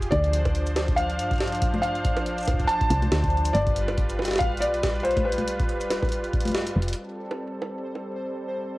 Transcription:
0.02 closed hi-hat, shaker
0.11 D2 F3 D4 C5 D5, kick, closed hi-hat
0.24 closed hi-hat
0.33 closed hi-hat
0.45 kick, closed hi-hat, high bongo
0.55 closed hi-hat
0.67 closed hi-hat, shaker
0.76 snare, closed hi-hat, high bongo
0.88 kick, closed hi-hat
0.96 F5, closed hi-hat
1.10 closed hi-hat
1.19 G2, closed hi-hat
1.31 kick, closed hi-hat
1.33 closed hi-hat
1.36 closed hi-hat
1.38 snare, closed hi-hat
1.41 closed hi-hat
1.43 closed hi-hat
1.46 closed hi-hat
1.49 closed hi-hat
1.52 closed hi-hat
1.55 closed hi-hat
1.62 kick, closed hi-hat
1.74 closed hi-hat, low conga
1.82 F5, closed hi-hat
1.95 closed hi-hat
2.05 kick, closed hi-hat
2.17 A1, closed hi-hat, high bongo
2.26 closed hi-hat
2.38 closed hi-hat, shaker
2.41 shaker
2.43 shaker
2.45 kick, closed hi-hat, high bongo, shaker
2.54 kick
2.60 kick, closed hi-hat
2.64 A5, kick
2.69 closed hi-hat
2.81 kick, closed hi-hat
2.90 C2, closed hi-hat
3.02 closed hi-hat, low conga
3.12 D2, snare, closed hi-hat
3.24 kick, closed hi-hat
3.30 closed hi-hat
3.37 closed hi-hat
3.45 closed hi-hat, shaker
3.53 G1 G3 F4 B4 D5, closed hi-hat
3.67 kick, closed hi-hat
3.76 closed hi-hat
3.88 closed hi-hat, high bongo
3.98 kick, closed hi-hat
4.10 closed hi-hat, shaker
4.19 snare, high bongo
4.25 snare, closed hi-hat
4.28 snare
4.31 snare, closed hi-hat
4.33 snare
4.36 snare
4.38 F5, kick, snare, closed hi-hat
4.57 D5, closed hi-hat
4.62 B1, closed hi-hat
4.74 closed hi-hat
4.83 kick, snare, closed hi-hat
4.95 closed hi-hat
5.00 C5, closed hi-hat
5.05 closed hi-hat
5.11 closed hi-hat
5.17 kick, closed hi-hat, low conga
5.25 B4
5.32 closed hi-hat
5.38 closed hi-hat, low conga
5.48 closed hi-hat
5.60 D1, kick, closed hi-hat
5.69 closed hi-hat
5.81 closed hi-hat, shaker
5.91 snare, closed hi-hat, high bongo
6.02 kick, closed hi-hat, high bongo
6.05 closed hi-hat
6.09 closed hi-hat
6.12 closed hi-hat
6.24 closed hi-hat
6.33 kick, closed hi-hat
6.40 closed hi-hat
6.45 closed hi-hat, low conga
6.48 closed hi-hat, low conga
6.50 closed hi-hat, low conga
6.52 G2, snare, low conga
6.59 closed hi-hat
6.62 closed hi-hat
6.67 closed hi-hat, shaker
6.76 F1
6.82 closed hi-hat
6.88 closed hi-hat
6.93 closed hi-hat
6.97 G3 C4 A4 C5
7.31 high bongo
7.62 high bongo
7.95 high bongo

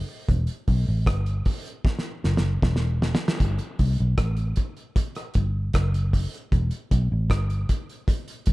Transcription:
0.29 E1, kick, closed hi-hat
0.47 closed hi-hat
0.68 B1, kick, open hi-hat
0.88 A1
1.06 G1, kick, cross-stick, closed hi-hat
1.26 closed hi-hat
1.45 kick, open hi-hat
1.66 closed hi-hat
1.85 kick, snare
1.99 snare
2.24 F#1, snare
2.37 snare
2.62 E1, kick, snare
2.76 snare
3.02 snare
3.15 snare
3.28 snare
3.40 G1, kick, closed hi-hat
3.59 closed hi-hat
3.79 C2, kick, open hi-hat
3.98 B1, closed hi-hat
4.18 A1, kick, cross-stick, closed hi-hat
4.37 closed hi-hat
4.56 kick, closed hi-hat
4.77 closed hi-hat
4.96 kick, closed hi-hat
5.15 cross-stick, closed hi-hat
5.34 G1, kick, closed hi-hat
5.74 F#1, kick, cross-stick, closed hi-hat
5.94 closed hi-hat
6.13 kick, open hi-hat
6.34 closed hi-hat
6.52 E1, kick, closed hi-hat
6.71 closed hi-hat
6.91 B1, kick, closed hi-hat
7.12 A1
7.30 G1, kick, cross-stick, closed hi-hat
7.50 closed hi-hat
7.69 kick, closed hi-hat
7.89 closed hi-hat
8.08 kick, closed hi-hat
8.28 closed hi-hat
8.46 F#1, kick, closed hi-hat

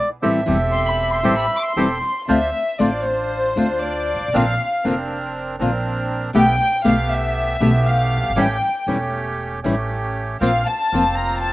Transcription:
0.22 A1 E3 G3 C4 E4 G4 A4 E5
0.46 E1 E3 G3 C4 E4 G4 A4
0.72 C6
0.86 B5
1.12 C6
1.23 A1 E3 G3 C4 E4 G4 A4
1.38 B5
1.57 D6
1.64 C6
1.76 E1 E3 G3 C4 E4 G4 A4
2.28 D2 D3 A3 C4 D4 F4 C5 E5
2.79 A1 D3 A3 C4 D4 F4 C5 D5
3.05 C5
3.56 D2 D3 A3 C4 D4 F4 C5
3.82 D5
4.15 G1
4.21 G#1
4.28 A1
4.34 A#1 D3 A#3 C4 D4 F4 A#4 F5
4.84 F1 D3 A#3 C4 D4 F4 A#4
5.59 A#1 D3 A#3 C4 D4 F4 A#4
6.34 B1 B2 D3 A3 B3 G4 G5
6.84 B1 B2 D3 A3 B3 G4 F5
7.12 E5
7.60 B1 B2 D3 A3 B3 G4
7.87 F5
8.17 F#1
8.24 G1
8.30 G#1
8.36 A1 E3 G3 A3 C#4 E4 G4 G5
8.87 E1 E3 G3 A3 C#4 E4 G4
9.63 A1 E3 G3 A3 C#4 E4 G4
10.40 A#1 F3 A#3 C4 F4 F5
10.66 A5
10.92 F1 F3 A#3 C4 F4
11.15 A#5
11.39 A5

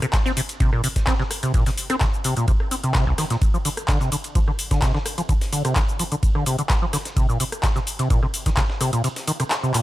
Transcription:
0.02 C3, cross-stick, closed hi-hat, shaker
0.13 kick, snare, clap, closed hi-hat, ride, shaker
0.26 C4, snare, shaker
0.37 C3, open hi-hat, ride, shaker
0.49 closed hi-hat, ride, shaker
0.60 C3, kick, closed hi-hat, ride, shaker
0.73 A#2, cross-stick
0.84 C3, open hi-hat, ride, shaker
0.96 kick, snare, closed hi-hat, shaker
1.07 C4, kick, snare, clap, closed hi-hat, ride, shaker
1.19 C3, snare
1.31 cross-stick, open hi-hat, ride, shaker
1.43 C3, closed hi-hat, ride, shaker
1.54 A#2, kick, closed hi-hat, ride, shaker
1.66 C3, snare, open hi-hat, shaker
1.77 open hi-hat, ride, shaker
1.90 C4, cross-stick, closed hi-hat, ride, shaker
2.01 C3, kick, snare, clap, closed hi-hat, ride, shaker
2.14 shaker
2.24 C3, open hi-hat, ride, shaker
2.37 A#2, closed hi-hat, shaker
2.48 C3, kick, closed hi-hat, ride, shaker
2.60 cross-stick
2.71 C4, open hi-hat, ride, shaker
2.83 C3, closed hi-hat, shaker
2.94 C3, kick, snare, clap, closed hi-hat, ride, shaker
3.07 C2
3.18 D#3, cross-stick, snare, open hi-hat, ride, shaker
3.30 A#2, snare, closed hi-hat, shaker
3.42 kick, closed hi-hat, ride, shaker
3.54 F3, shaker
3.65 D3, open hi-hat, ride, shaker
3.77 cross-stick, closed hi-hat, shaker
3.88 D3, kick, snare, clap, closed hi-hat, ride, shaker
4.01 C3, snare, shaker
4.12 D3, open hi-hat, ride, shaker
4.24 closed hi-hat, ride, shaker
4.35 F3, kick, closed hi-hat, ride, shaker
4.48 D3, cross-stick
4.59 open hi-hat, ride, shaker
4.71 D3, kick, snare, closed hi-hat, shaker
4.82 C3, kick, snare, clap, closed hi-hat, ride, shaker
4.94 D3, snare
5.06 cross-stick, open hi-hat, ride, shaker
5.18 F3, closed hi-hat, ride, shaker
5.29 D3, kick, closed hi-hat, ride, shaker
5.41 snare, open hi-hat, shaker
5.53 D3, open hi-hat, ride, shaker
5.65 C3, cross-stick, closed hi-hat, ride, shaker
5.76 D3, kick, snare, clap, closed hi-hat, ride, shaker
5.89 shaker
5.99 F3, open hi-hat, ride, shaker
6.12 D3, closed hi-hat, shaker
6.23 kick, closed hi-hat, ride, shaker
6.35 D3, cross-stick
6.46 C3, open hi-hat, ride, shaker
6.59 D3, closed hi-hat, shaker
6.69 kick, snare, clap, closed hi-hat, ride, shaker
6.82 F3
6.93 D3, cross-stick, snare, open hi-hat, ride, shaker
7.05 snare, closed hi-hat, shaker
7.17 C3, kick, closed hi-hat, ride, shaker
7.29 A#2, shaker
7.40 C3, open hi-hat, ride, shaker
7.52 cross-stick, closed hi-hat, shaker
7.63 D#3, kick, snare, clap, closed hi-hat, ride, shaker
7.76 C3, snare, shaker
7.87 open hi-hat, ride, shaker
7.99 C3, closed hi-hat, ride, shaker
8.10 A#2, kick, closed hi-hat, ride, shaker
8.23 C3, cross-stick
8.34 open hi-hat, ride, shaker
8.46 D#3, kick, snare, closed hi-hat, shaker
8.57 C3, kick, snare, clap, closed hi-hat, ride, shaker
8.69 snare
8.81 C3, cross-stick, open hi-hat, ride, shaker
8.93 A#2, closed hi-hat, ride, shaker
9.04 C3, closed hi-hat, ride, shaker
9.16 snare, open hi-hat, shaker
9.27 D#3, open hi-hat, ride, shaker
9.40 C3, cross-stick, closed hi-hat, ride, shaker
9.51 snare, clap, closed hi-hat, ride, shaker
9.63 C3, shaker
9.74 A#2, clap, open hi-hat, ride, shaker

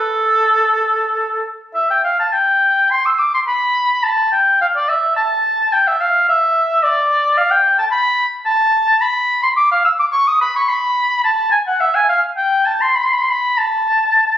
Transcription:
Already playing: A4
1.74 E5
1.90 G5
2.04 F5
2.19 A5
2.33 G5
2.91 C6
3.06 E6
3.19 D6
3.34 C6
3.47 B5
4.03 A5
4.32 G5
4.61 F5
4.76 D5
4.89 E5
5.16 A5
5.73 G5
5.88 E5
6.01 F5
6.29 E5
6.83 D5
7.38 F5
7.51 G5
7.79 A5
7.91 B5
8.46 A5
9.01 B5
9.43 C6
9.57 D6
9.71 F5
9.85 E6
9.99 D6
10.12 C#6
10.28 D#6
10.41 B5
10.56 C#6
10.69 B5
11.24 A5
11.51 G#5
11.67 F#5
11.80 E5
11.95 G#5
12.09 F5
12.37 G5
12.65 A5
12.81 C6
12.95 B5
13.04 C6
13.13 B5
13.21 C6
13.30 B5
13.58 A5

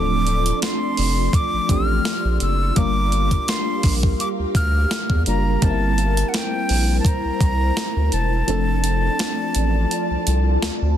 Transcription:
Already playing: D1 F3 A3 C4 D4 F4 A4 D5 C6 D6
0.27 closed hi-hat
0.46 closed hi-hat
0.62 C6, snare, closed hi-hat
0.97 F1, open hi-hat
1.33 D6, kick, closed hi-hat
1.53 A1
1.69 A1 F3 A3 C4 D4 G4 F6, kick, closed hi-hat
2.05 snare, closed hi-hat
2.25 A#1
2.40 F#1 E6, closed hi-hat
2.76 G1 G3 A#3 D4 F4 G4 A#4 F5 D6, kick, closed hi-hat
3.12 closed hi-hat
3.31 kick, closed hi-hat
3.48 C6, snare, closed hi-hat
3.83 A#1, kick, open hi-hat
4.03 kick
4.20 D6, closed hi-hat
4.39 D2
4.55 D2 F6, kick, closed hi-hat
4.91 snare, closed hi-hat
5.10 E2, kick
5.26 F#1 G3 A#3 D4 F4 A#4 A#5, closed hi-hat
5.62 G1 G3 A#3 C4 D#4 E4 A#4 C5 A5, kick, closed hi-hat
5.70 E4
5.98 closed hi-hat
6.17 closed hi-hat
6.29 F#5
6.34 G5, snare, closed hi-hat
6.69 A#1, open hi-hat
7.00 A5
7.05 A#5, kick, closed hi-hat
7.25 C2
7.41 C2, kick, closed hi-hat
7.77 snare, closed hi-hat
7.96 D2
8.12 E1 A5, closed hi-hat
8.47 F1 F3 A3 C4 D4 F4 A4 D5 A5, closed hi-hat
8.84 closed hi-hat
9.19 snare, closed hi-hat
9.55 A1, closed hi-hat
9.91 closed hi-hat
10.11 C2
10.27 C2, closed hi-hat
10.62 D2, snare, closed hi-hat
10.82 D2

